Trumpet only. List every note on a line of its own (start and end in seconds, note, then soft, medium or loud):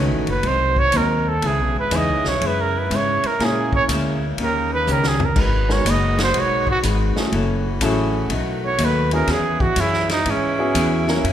0.30 0.49 B4 medium
0.47 0.80 C5 medium
0.79 0.98 C#5 loud
0.97 1.30 A#4 medium
1.29 1.48 A4 medium
1.47 1.78 G#4 medium
1.79 1.98 B4 medium
1.96 2.30 D#5 medium
2.28 2.48 C#5 medium
2.47 2.62 B4 medium
2.61 2.80 A#4 medium
2.78 2.97 B4 medium
2.95 3.28 C#5 loud
3.27 3.46 A#4 medium
3.44 3.75 G#4 medium
3.75 3.84 C#5 loud
4.43 4.71 A#4 medium
4.73 4.94 B4 loud
4.92 5.10 A#4 medium
5.08 5.26 G#4 loud
5.25 5.42 A#4 medium
5.41 5.74 B4 medium
5.73 5.92 C#5 medium
5.90 6.20 D#5 loud
6.23 6.41 C5 loud
6.40 6.70 C#5 loud
6.71 6.79 F#4 loud
8.66 8.86 C#5 loud
8.85 9.13 B4 loud
9.14 9.33 A#4 medium
9.31 9.63 G#4 medium
9.61 9.82 F#4 loud
9.80 10.11 E4 loud
10.11 10.31 D#4 loud
10.30 11.26 C#4 medium